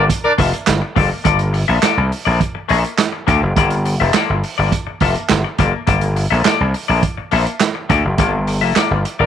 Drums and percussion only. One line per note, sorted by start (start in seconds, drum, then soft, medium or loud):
0.10 kick loud
0.10 closed hi-hat loud
0.38 kick medium
0.38 open hi-hat medium
0.53 closed hi-hat medium
0.67 snare loud
0.67 clap loud
0.67 closed hi-hat medium
0.96 kick loud
0.96 open hi-hat medium
1.25 kick loud
1.25 closed hi-hat medium
1.39 closed hi-hat medium
1.54 open hi-hat medium
1.83 snare loud
1.83 clap loud
1.83 closed hi-hat medium
2.12 open hi-hat medium
2.41 kick medium
2.41 closed hi-hat medium
2.69 open hi-hat medium
2.84 closed hi-hat soft
2.98 snare loud
2.98 clap medium
2.98 closed hi-hat medium
3.28 kick loud
3.28 closed hi-hat medium
3.56 kick loud
3.56 closed hi-hat medium
3.70 closed hi-hat medium
3.85 open hi-hat medium
4.14 snare loud
4.14 clap loud
4.14 closed hi-hat medium
4.44 open hi-hat medium
4.72 kick medium
4.72 closed hi-hat medium
5.00 kick medium
5.00 open hi-hat medium
5.15 closed hi-hat medium
5.29 snare loud
5.29 clap medium
5.29 closed hi-hat medium
5.59 kick loud
5.59 closed hi-hat medium
5.87 kick loud
5.87 closed hi-hat medium
6.01 closed hi-hat soft
6.16 open hi-hat medium
6.45 snare loud
6.45 clap loud
6.45 closed hi-hat medium
6.74 open hi-hat medium
7.03 kick loud
7.03 closed hi-hat medium
7.31 open hi-hat medium
7.47 closed hi-hat medium
7.60 snare loud
7.60 clap loud
7.60 closed hi-hat medium
7.90 kick medium
7.90 closed hi-hat medium
8.18 kick loud
8.18 closed hi-hat medium
8.47 open hi-hat medium
8.76 snare loud
8.76 clap medium
8.76 closed hi-hat medium
9.05 closed hi-hat medium